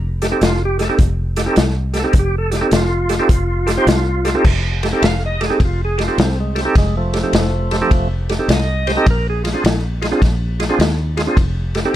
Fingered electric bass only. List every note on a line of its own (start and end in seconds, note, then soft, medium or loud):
0.00 0.31 F1 medium
0.41 0.89 F1 medium
0.99 1.46 F1 medium
1.57 2.04 C2 medium
2.14 2.61 F1 loud
2.72 3.19 F1 medium
3.29 3.77 F1 loud
3.87 4.34 C2 loud
4.45 4.92 F1 medium
5.02 5.50 F1 medium
5.60 6.07 F1 loud
6.18 6.65 C2 medium
6.75 7.23 F1 medium
7.33 7.81 F1 medium
7.91 8.38 F1 medium
8.48 8.96 C2 loud
9.06 9.54 A#1 medium
9.64 10.11 A#1 medium
10.22 10.69 A#1 loud
10.79 11.26 D#2 loud
11.37 11.84 F1 medium